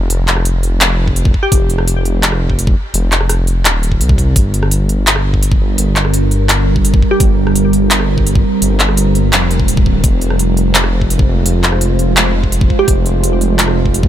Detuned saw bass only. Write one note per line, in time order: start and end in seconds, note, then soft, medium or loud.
0.10 1.33 F1 loud
1.52 2.75 F1 loud
2.94 3.66 F1 loud
3.65 4.02 D#1 medium
4.00 4.35 C2 medium
4.36 5.59 G1 loud
5.60 5.76 G1 loud
5.78 7.01 G1 loud
7.20 8.43 G1 medium
8.62 9.34 G1 loud
9.33 9.70 F1 medium
9.68 10.03 D1 medium
10.04 11.27 F1 loud
11.28 11.44 F1 loud
11.46 12.69 F1 loud
12.88 14.08 F1 loud